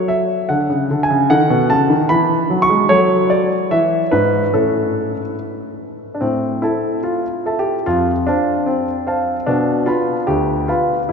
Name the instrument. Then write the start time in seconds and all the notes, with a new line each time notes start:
grand piano
Already playing: F#3 A4
0.08 E5
0.49 D3 F#5
0.70 C#3
0.91 D3
1.03 G#5
1.11 C#3
1.30 D#3 A4 F#5
1.50 B2
1.70 C#3 A5
1.90 D#3
2.09 E3 B5
2.50 F#3
2.62 C#6
2.69 G#3
2.89 F#3 A4 C#5
3.30 D5
3.71 E3 E5
4.11 G#2 B4
4.54 A2 C#4 E4 A4
6.14 D4
6.21 A2 C4
6.62 E4 A4 E5 A5
7.03 F4
7.46 A4 E5 A5
7.59 G4
7.86 F2 F4
8.27 D4 C5 F5 A5
8.66 C4
9.07 C5 F5 A5
9.46 B2 D4
9.86 F4 B4 F5 B5
10.27 D2 G4
10.68 F4 B4 F5 B5
11.09 E4